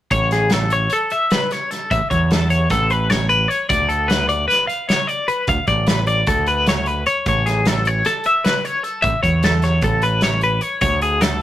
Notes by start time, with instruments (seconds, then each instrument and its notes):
0.11 picked electric bass A1, clean electric guitar C#5, kick, closed hi-hat
0.31 clean electric guitar G#4, snare, closed hi-hat
0.50 clean electric guitar A4, snare, closed hi-hat
0.70 clean electric guitar C#5, closed hi-hat
0.90 clean electric guitar A4, closed hi-hat
1.10 clean electric guitar E5, closed hi-hat
1.31 clean electric guitar B4, snare, closed hi-hat
1.51 clean electric guitar C#5, snare, closed hi-hat
1.71 clean electric guitar A4, snare, closed hi-hat
1.91 picked electric bass A1, clean electric guitar E5, kick, closed hi-hat
2.10 picked electric bass E2, clean electric guitar C#5, kick, closed hi-hat
2.31 clean electric guitar A4, snare, closed hi-hat
2.50 clean electric guitar C#5, closed hi-hat
2.70 picked electric bass A1, clean electric guitar A4, kick, snare, closed hi-hat
2.90 clean electric guitar B4, closed hi-hat
3.10 clean electric guitar C#5, snare, closed hi-hat
3.29 clean electric guitar B4, closed hi-hat
3.48 clean electric guitar C#5, closed hi-hat
3.69 picked electric bass D2, clean electric guitar D5, kick, closed hi-hat
3.89 clean electric guitar A4, closed hi-hat
4.08 clean electric guitar B4, snare, closed hi-hat
4.29 clean electric guitar D5, closed hi-hat
4.48 clean electric guitar B4, snare, closed hi-hat
4.67 clean electric guitar F5, closed hi-hat
4.89 clean electric guitar C#5, snare, closed hi-hat
5.07 clean electric guitar D5, closed hi-hat
5.28 clean electric guitar B4, closed hi-hat
5.47 picked electric bass D2, clean electric guitar F5, kick, closed hi-hat
5.67 picked electric bass A1, clean electric guitar D5, kick, closed hi-hat
5.87 clean electric guitar B4, snare, closed hi-hat
6.07 clean electric guitar D5, closed hi-hat
6.27 picked electric bass D2, clean electric guitar A4, kick, closed hi-hat
6.46 clean electric guitar B4, closed hi-hat
6.66 clean electric guitar C#5, snare, closed hi-hat
6.86 clean electric guitar B4, closed hi-hat
7.06 clean electric guitar C#5, closed hi-hat
7.26 picked electric bass A1, clean electric guitar C#5, kick, closed hi-hat
7.46 clean electric guitar G#4, snare, closed hi-hat
7.65 clean electric guitar A4, snare, closed hi-hat
7.85 clean electric guitar C#5, closed hi-hat
8.05 clean electric guitar A4, snare, closed hi-hat
8.24 clean electric guitar E5, closed hi-hat
8.44 clean electric guitar B4, snare, closed hi-hat
8.65 clean electric guitar C#5, closed hi-hat
8.83 clean electric guitar A4, closed hi-hat
9.02 picked electric bass A1, clean electric guitar E5, kick, closed hi-hat
9.23 picked electric bass E2, clean electric guitar C#5, kick, closed hi-hat
9.43 clean electric guitar A4, snare, closed hi-hat
9.62 clean electric guitar C#5, snare, closed hi-hat
9.82 picked electric bass A1, clean electric guitar A4, kick, closed hi-hat
10.02 clean electric guitar B4, closed hi-hat
10.21 clean electric guitar C#5, snare, closed hi-hat
10.41 clean electric guitar B4, closed hi-hat
10.61 clean electric guitar C#5, closed hi-hat
10.81 picked electric bass D2, clean electric guitar C#5, kick, closed hi-hat
11.01 clean electric guitar G#4, closed hi-hat
11.21 clean electric guitar A4, snare, closed hi-hat